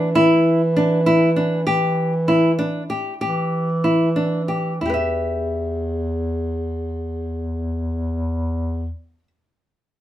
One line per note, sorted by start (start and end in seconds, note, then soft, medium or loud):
0.00 0.13 E3 medium
0.15 1.65 E3 medium
0.15 0.61 E4 medium
0.77 0.99 D4 medium
1.06 1.29 E4 medium
1.36 1.59 D4 medium
1.67 3.05 E3 medium
1.67 2.12 G4 medium
2.28 2.51 E4 medium
2.59 2.82 D4 medium
2.90 3.13 G4 medium
3.21 4.79 E3 medium
3.21 3.68 G4 medium
3.84 4.08 E4 soft
4.16 4.40 D4 medium
4.48 4.73 G4 soft
4.81 8.90 E2 medium
4.81 4.93 E4 soft
4.86 9.19 G4 soft
4.90 9.23 B4 soft
4.94 9.27 E5 soft